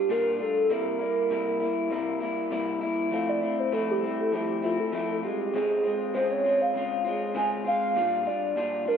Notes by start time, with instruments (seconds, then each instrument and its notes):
Already playing: soft synth lead G4
0.09 clean electric guitar A#2 G3 D4 F4, soft synth lead A#4
0.39 clean electric guitar G3 D4 F4, soft synth lead A4
0.69 clean electric guitar C3 G3 A#3 E4, soft synth lead A#4
0.99 clean electric guitar G3 A#3 E4
1.30 clean electric guitar C3 G3 A#3 E4
1.60 clean electric guitar G3 A#3 E4
1.90 clean electric guitar C3 G3 A#3 E4
2.20 clean electric guitar G3 A#3 E4
2.51 clean electric guitar C3 G3 A#3 E4
2.81 clean electric guitar G3 A#3 E4
3.11 clean electric guitar F3 A3 C4 E4, soft synth lead F5
3.29 soft synth lead D5
3.41 clean electric guitar A3 C4 E4
3.60 soft synth lead C5
3.72 clean electric guitar F3 A3 C4 E4, soft synth lead A4
3.91 soft synth lead G4
4.02 clean electric guitar A3 C4 E4
4.21 soft synth lead A4
4.32 clean electric guitar F3 A3 C4 E4, soft synth lead G4
4.62 clean electric guitar A3 C4 E4, soft synth lead F4
4.80 soft synth lead A4
4.92 clean electric guitar F3 A3 C4 E4
5.11 soft synth lead A4
5.23 clean electric guitar G#3 C4 F4, soft synth lead G4
5.54 clean electric guitar C#3 G#3 C4 F4, soft synth lead G#4
5.83 clean electric guitar G#3 C4 F4
6.14 clean electric guitar C#3 G#3 C4 F4, soft synth lead C5
6.31 soft synth lead C#5
6.44 clean electric guitar G#3 C4 F4
6.62 soft synth lead F5
6.74 clean electric guitar C#3 G#3 C4 F4
7.04 clean electric guitar G#3 C4 F4
7.34 clean electric guitar C#3 G#3 C4 F4, soft synth lead G#5
7.64 clean electric guitar G#3 C4 F4, soft synth lead F5
7.95 clean electric guitar A#2 G3 D4 F4
8.25 clean electric guitar G3 D4 F4, soft synth lead D5
8.56 clean electric guitar A#2 G3 D4 F4
8.85 clean electric guitar G3 D4 F4, soft synth lead A#4